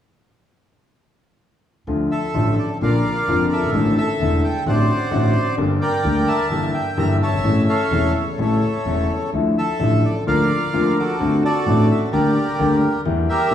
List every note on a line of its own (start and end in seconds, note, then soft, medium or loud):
1.87 2.07 D2 medium
1.87 2.07 D3 medium
1.87 2.07 F3 soft
1.87 2.07 A3 soft
1.87 2.07 F4 medium
2.11 2.78 A4 medium
2.11 2.55 E5 medium
2.34 2.54 A1 medium
2.34 2.54 A2 medium
2.34 2.54 D3 medium
2.34 2.54 F3 soft
2.34 2.54 A3 soft
2.34 2.54 F4 medium
2.59 2.69 D5 soft
2.81 3.01 A#1 medium
2.81 3.01 A#2 medium
2.81 3.01 D3 medium
2.81 3.01 F3 soft
2.81 3.01 A#3 soft
2.81 3.01 F4 soft
2.81 3.71 A#4 medium
2.81 3.71 D5 soft
2.81 3.47 F5 medium
3.28 3.47 F1 medium
3.28 3.47 F2 medium
3.28 3.47 D3 medium
3.28 3.47 F3 medium
3.28 3.47 A#3 medium
3.28 3.47 F4 medium
3.52 3.99 A4 soft
3.52 3.94 E5 medium
3.57 3.62 F#1 soft
3.57 3.63 F#1 soft
3.63 3.68 G1 soft
3.68 3.73 G#1 medium
3.68 3.74 G#1 medium
3.74 3.93 A1 medium
3.74 3.93 A2 medium
3.74 3.93 D3 medium
3.74 3.93 E3 medium
3.74 3.93 A3 medium
3.74 3.93 E4 medium
3.98 4.64 A4 medium
3.98 4.40 E5 medium
4.20 4.39 E1 medium
4.20 4.40 E1 medium
4.20 4.40 E2 medium
4.20 4.39 D3 medium
4.20 4.40 E3 soft
4.20 4.40 A3 soft
4.20 4.40 E4 medium
4.44 4.65 G5 medium
4.66 4.85 A1 medium
4.66 4.85 A2 medium
4.66 4.86 D3 medium
4.66 4.85 A3 soft
4.66 4.86 C4 soft
4.66 4.85 F#4 medium
4.66 5.55 C5 medium
4.66 5.56 D5 medium
4.66 5.31 F#5 medium
5.11 5.31 A1 medium
5.11 5.31 A2 medium
5.11 5.31 D3 medium
5.11 5.31 A3 medium
5.11 5.31 C4 medium
5.11 5.31 F#4 medium
5.57 5.77 G1 medium
5.57 5.77 G2 medium
5.57 5.77 D3 medium
5.57 5.77 G3 medium
5.57 5.77 A#3 soft
5.57 5.78 G4 medium
5.81 6.47 A#4 medium
5.81 6.47 D5 medium
5.81 6.29 G5 medium
6.04 6.24 D2 medium
6.04 6.24 D3 medium
6.04 6.24 G3 soft
6.04 6.24 A#3 soft
6.04 6.24 G4 medium
6.27 7.17 E5 medium
6.27 6.71 A5 medium
6.50 6.70 G1 medium
6.50 6.71 G1 medium
6.50 6.71 G2 medium
6.50 6.70 E3 medium
6.50 6.71 G3 medium
6.50 6.71 A#3 soft
6.50 6.71 G4 medium
6.74 6.98 G5 medium
6.97 7.17 G1 medium
6.97 7.17 G2 medium
6.97 7.17 E3 medium
6.97 7.17 G3 medium
6.97 7.17 A#3 medium
6.97 7.17 G4 medium
6.97 7.09 A#5 medium
7.23 7.31 F#1 soft
7.23 7.68 C#5 medium
7.23 8.12 E5 medium
7.23 7.65 A5 medium
7.27 7.33 F#1 soft
7.32 7.38 G1 soft
7.38 7.43 G#1 medium
7.38 7.45 G#1 soft
7.44 7.64 A1 medium
7.44 7.64 A2 medium
7.44 7.64 C#3 medium
7.44 7.64 E3 medium
7.44 7.64 A3 medium
7.44 7.64 E4 medium
7.69 8.40 A4 soft
7.69 8.40 C#5 medium
7.69 8.12 F5 medium
7.91 8.11 E1 medium
7.91 8.11 E2 medium
7.91 8.11 C#3 medium
7.91 8.11 E3 soft
7.91 8.11 A3 soft
7.91 8.11 E4 medium
8.17 8.27 E5 medium
8.38 8.58 A1 medium
8.38 8.58 A2 medium
8.38 8.58 C#3 soft
8.38 8.58 E3 soft
8.38 8.58 A3 soft
8.38 8.58 E4 medium
8.38 9.30 A4 soft
8.38 9.30 C#5 soft
8.42 9.07 E5 medium
8.85 9.05 E1 medium
8.85 9.06 E1 medium
8.85 9.06 E2 medium
8.85 9.06 C#3 medium
8.85 9.06 E3 medium
8.85 9.06 A3 medium
8.85 9.06 E4 medium
9.33 9.52 D2 medium
9.33 9.53 D2 medium
9.33 9.53 D3 medium
9.33 9.53 F3 medium
9.33 9.53 A3 medium
9.33 9.53 E4 medium
9.58 10.24 A4 medium
9.58 10.06 E5 medium
9.79 9.99 A1 medium
9.79 10.00 A1 medium
9.79 10.00 A2 medium
9.79 9.99 D3 medium
9.79 10.00 F3 soft
9.79 10.00 A3 soft
9.79 10.00 E4 medium
10.05 10.15 D5 medium
10.26 10.47 D2 medium
10.26 10.47 D3 medium
10.26 10.47 F3 medium
10.26 10.46 A#3 soft
10.26 10.47 F4 medium
10.26 11.17 A#4 medium
10.26 10.98 D5 medium
10.26 10.93 F5 medium
10.73 10.93 D2 medium
10.73 10.93 D3 medium
10.73 10.93 F3 medium
10.73 10.93 A#3 medium
10.73 10.93 F4 medium
10.99 11.43 F#4 medium
10.99 11.43 A4 soft
10.99 11.41 D5 medium
11.20 11.40 D2 medium
11.20 11.40 D3 medium
11.20 11.40 A3 medium
11.20 11.40 C4 medium
11.20 11.40 F#4 medium
11.45 12.10 F#4 medium
11.45 12.10 A4 medium
11.45 11.87 D5 medium
11.66 11.86 A1 medium
11.66 11.86 A2 medium
11.66 11.86 D3 medium
11.66 11.86 A3 medium
11.66 11.86 C4 soft
11.66 11.86 F#4 medium
11.91 12.01 E5 medium
12.12 12.32 D2 medium
12.12 12.32 D3 medium
12.12 12.32 G3 soft
12.12 12.32 A#3 soft
12.12 13.01 G4 soft
12.12 12.33 G4 medium
12.12 13.01 A#4 medium
12.12 12.78 D5 medium
12.59 12.79 D2 medium
12.59 12.79 D3 medium
12.59 12.79 G3 medium
12.59 12.79 A#3 medium
12.59 12.79 G4 medium
13.05 13.25 E2 medium
13.05 13.25 E3 medium
13.05 13.25 G3 medium
13.05 13.25 A#3 medium
13.05 13.25 G4 medium
13.29 13.54 G4 medium
13.29 13.54 A#4 medium
13.29 13.54 E5 medium
13.51 13.54 A#1 medium
13.51 13.54 A#2 medium
13.51 13.54 E3 medium